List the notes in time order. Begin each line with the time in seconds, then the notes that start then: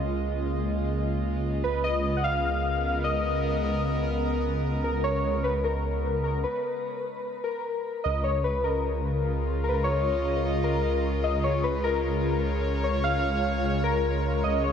Already playing: C#2 C#3 G#3 A#3 F4 D#5
1.64 C#2 B4
1.84 D#5
2.14 B3 F#5
2.24 F5
2.39 A#4
3.04 D#5
4.84 A#4
5.04 C#5
5.44 B4
5.64 A#4
6.24 A#4
6.44 B4
7.44 A#4
8.04 C#2 C#3 D#5
8.24 G#3 C#5
8.44 B4
8.56 F4
8.64 A#4
9.41 D#5
9.64 A#4
9.69 B4
9.74 A#4
9.84 C#5
10.64 A#4
11.24 D#5
11.44 C#5
11.64 B4
11.72 C#5
11.84 A#4
12.84 C#5
13.04 F5
13.84 A#4
14.44 C#2 D#5
14.63 C#5